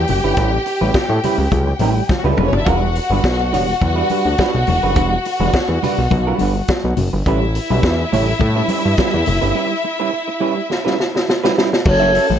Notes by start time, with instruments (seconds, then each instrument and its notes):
Already playing: violin section G4 G5
0.07 analog synth bass F#1, muted clean electric guitar stroke, open hi-hat, high conga, low conga
0.24 analog synth bass G1, clean electric guitar G3 C#4 E4 B4
0.37 analog synth bass A1, clean electric guitar G3 C#4 E4 B4, kick, closed hi-hat, muted conga
0.53 muted clean electric guitar stroke, muted conga
0.66 muted clean electric guitar stroke, open hi-hat
0.81 analog synth bass A1, clean electric guitar G3 C#4 E4 B4, high conga
0.94 muted clean electric guitar stroke, kick, snare, closed hi-hat
1.09 analog synth bass A2, muted clean electric guitar stroke, muted conga
1.23 clean electric guitar G3 C#4 E4 B4, open hi-hat, low conga
1.38 analog synth bass C#2, muted clean electric guitar stroke
1.52 analog synth bass C#2, kick, closed hi-hat, muted conga, high conga, low conga
1.67 muted clean electric guitar stroke, muted conga
1.79 analog synth bass A1, clean electric guitar G3 C#4 E4 B4, open hi-hat, high conga
1.96 muted clean electric guitar stroke
2.09 muted clean electric guitar stroke, kick, snare, high conga
2.18 violin section F#4
2.24 analog synth bass C#2, violin section G3 G4, clean electric guitar G3 C#4 E4 B4, muted conga
2.32 violin section A3 A4
2.37 analog synth bass E1, clean electric guitar G3 C#4 E4 B4, violin section B3 B4, mid tom, high conga, low conga
2.46 violin section C#4 C#5
2.52 analog synth bass F#1, violin section D4 D5, muted clean electric guitar stroke, floor tom
2.60 violin section E4 E5
2.66 analog synth bass E1, clean electric guitar G3 D4 F#4 B4, violin section F#4 F#5, kick, closed hi-hat, muted conga
2.82 muted clean electric guitar stroke, muted conga
2.95 muted clean electric guitar stroke, open hi-hat
3.10 analog synth bass G1, clean electric guitar G3 D4 F#4 B4, high conga
3.24 analog synth bass B1, muted clean electric guitar stroke, kick, snare, closed hi-hat, muted conga
3.39 muted clean electric guitar stroke
3.53 analog synth bass E1, clean electric guitar G3 D4 F#4 C#5, open hi-hat, low conga
3.68 muted clean electric guitar stroke
3.81 analog synth bass E2, muted clean electric guitar stroke, kick, closed hi-hat, muted conga, high conga, low conga
3.96 clean electric guitar G3 D4 F#4 B4
4.09 clean electric guitar G3 D4 F#4 B4, open hi-hat, high conga
4.25 analog synth bass D2, muted clean electric guitar stroke
4.38 clean electric guitar G3 D4 F#4 B4, kick, snare, closed hi-hat, high conga
4.54 analog synth bass B1, muted clean electric guitar stroke
4.67 analog synth bass E1, muted clean electric guitar stroke, open hi-hat, high conga, low conga
4.83 analog synth bass F#1, clean electric guitar G3 D4 F#4 B4
4.96 analog synth bass E1, clean electric guitar G3 D4 F#4 B4, kick, closed hi-hat, muted conga
5.13 muted clean electric guitar stroke, muted conga
5.25 muted clean electric guitar stroke, open hi-hat
5.40 analog synth bass E1, clean electric guitar G3 D4 F#4 B4, high conga
5.53 kick, snare, closed hi-hat, muted conga
5.68 analog synth bass E2, muted clean electric guitar stroke, muted conga
5.82 clean electric guitar G3 D4 F#4 B4, open hi-hat, low conga
5.98 analog synth bass B1, muted clean electric guitar stroke
6.11 analog synth bass B1, muted clean electric guitar stroke, kick, closed hi-hat, muted conga, high conga, low conga
6.27 clean electric guitar G3 D4 F#4 B4
6.38 analog synth bass G1, clean electric guitar G3 D4 F#4 B4, open hi-hat, high conga
6.56 muted clean electric guitar stroke
6.68 muted clean electric guitar stroke, kick, snare, closed hi-hat, high conga
6.84 analog synth bass B1, muted clean electric guitar stroke, muted conga
6.97 analog synth bass F#1, open hi-hat, high conga, low conga
7.13 analog synth bass G1, muted clean electric guitar stroke
7.26 analog synth bass A1, clean electric guitar G3 C#4 E4 B4, violin section E4 E5, kick, closed hi-hat
7.42 muted clean electric guitar stroke, muted conga
7.55 muted clean electric guitar stroke, open hi-hat
7.70 analog synth bass B1, clean electric guitar G3 C#4 E4 B4, high conga
7.82 analog synth bass E2, muted clean electric guitar stroke, kick, snare, closed hi-hat, muted conga
8.00 muted clean electric guitar stroke
8.12 analog synth bass A1, clean electric guitar G3 C#4 E4 C#5, open hi-hat, low conga
8.27 muted clean electric guitar stroke
8.40 analog synth bass A2, muted clean electric guitar stroke, kick, closed hi-hat, muted conga, high conga, low conga
8.56 clean electric guitar G3 C#4 E4 B4
8.68 clean electric guitar G3 C#4 E4 B4, open hi-hat, high conga
8.84 analog synth bass G2, muted clean electric guitar stroke
8.97 clean electric guitar G3 C#4 E4 B4, kick, snare, closed hi-hat, high conga
9.12 analog synth bass E2, muted clean electric guitar stroke, muted conga
9.25 analog synth bass F#1, muted clean electric guitar stroke, open hi-hat, high conga, low conga
9.41 analog synth bass G1, clean electric guitar G3 C#4 E4 B4
9.54 clean electric guitar G3 C#4 E4 B4
9.70 muted clean electric guitar stroke
9.84 muted clean electric guitar stroke
9.99 clean electric guitar G3 C#4 E4 B4
10.12 muted clean electric guitar stroke
10.28 muted clean electric guitar stroke
10.40 clean electric guitar G3 C#4 E4 B4
10.56 muted clean electric guitar stroke
10.70 muted clean electric guitar stroke, snare
10.85 clean electric guitar G3 C#4 E4 B4, snare
10.99 muted clean electric guitar stroke, snare
11.15 muted clean electric guitar stroke, snare
11.28 muted clean electric guitar stroke, snare
11.44 clean electric guitar G3 C#4 E4 B4, snare
11.57 clean electric guitar G3 C#4 E4 B4, snare
11.73 snare
11.85 analog synth bass F#1, violin section A4 A5, alto flute C#5, muted clean electric guitar stroke, kick, crash, muted conga
12.00 clean electric guitar C#4 F#4 A4 E5, muted conga
12.14 clean electric guitar C#4 F#4 A4 E5, open hi-hat
12.29 analog synth bass A1, muted clean electric guitar stroke, high conga